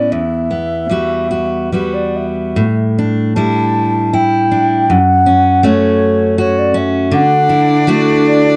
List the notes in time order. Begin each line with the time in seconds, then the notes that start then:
Already playing: A2 B3 C#4 E4 D5
0.12 E2 E5
0.51 B3
0.89 G3 B3 F#4
1.31 F#4
1.72 G3 B3 F#4 B4
1.94 D5
2.17 E5
2.56 A2
2.99 D4
3.35 G3 D4 E4 A5
4.13 E4 G5
4.51 D4
4.90 F#2 F#5
5.26 C#4
5.63 A3 C#4 F#4 C#5
6.38 F#4 C#5
6.58 D5
6.74 C#4 E5
7.11 D3 D4 F#5
7.49 E4
7.87 A3 E4 F#4
8.27 D5